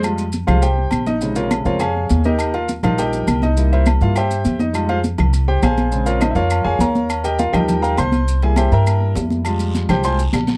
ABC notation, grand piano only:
X:1
M:4/4
L:1/8
Q:1/4=204
K:Fm
V:1 name="Grand piano"
z3 [FAcf] [Gcg]3 [Ee]- | [Ee] [FBdf] z [FBdf] [Adfa]3 [EGBe]- | [EGBe] [FBf] z [FBf] [GBeg]3 [Ee]- | [Ee] [=EBc=e] z [Ff] [Gceg]3 [_E_e]- |
[Ee] [FAcf] z3 [Gcg] [Acfa]2- | [Acfa] [FBdf] [Ee] [FBd=ef]2 [Adfa] [Bdfb]2- | [Bdfb] [GBeg] [FBf] [GBeg]2 [Bfgb] [cc']2- | [cc'] [Aa] [Gc=eg] [Begb]3 z2 |
z3 [Gcg] [cgac'] z3 |]
V:2 name="Grand piano" clef=bass
[G,A,F] z2 [G,A,] z4 | [C,D,A,]3 [D,A,C] z4 | z3 [F,G,E]3 z2 | [G,B,=E]3 [G,B,E] z4 |
[G,A,F] z6 z | [D,A,C]3 z4 z | z3 [F,G,E]3 z2 | z [G,B,=E]6- [G,B,E] |
[G,A,F]4 [G,A,F] z3 |]